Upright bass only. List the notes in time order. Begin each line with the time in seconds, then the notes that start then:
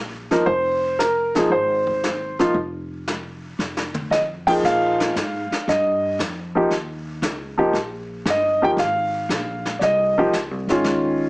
Already playing: A#1
0.46 F1
1.50 G#1
2.54 F1
3.59 F1
4.10 F2
4.63 A#2
5.16 G#2
5.51 muted upright bass stroke
5.68 G2
6.19 F2
6.71 D#2
7.22 C#2
7.73 A#1
8.25 G1
8.77 G#1
9.29 A#1
9.81 C2
10.33 C#2
10.51 C2
10.67 G#1
10.85 D#2